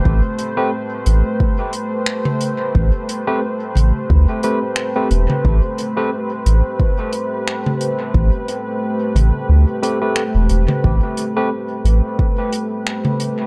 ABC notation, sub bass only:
X:1
M:4/4
L:1/16
Q:"Swing 16ths" 1/4=89
K:Am
V:1 name="Sub bass" clef=bass
A,,, z4 z A,,, z8 z | A,,, z4 z A,,, z D,, z4 z E,,, z | A,,, z4 z A,,, z8 z | A,,, z4 z A,,, z D,, z4 E,,, E,,, z |
A,,, z4 z A,,, z8 z |]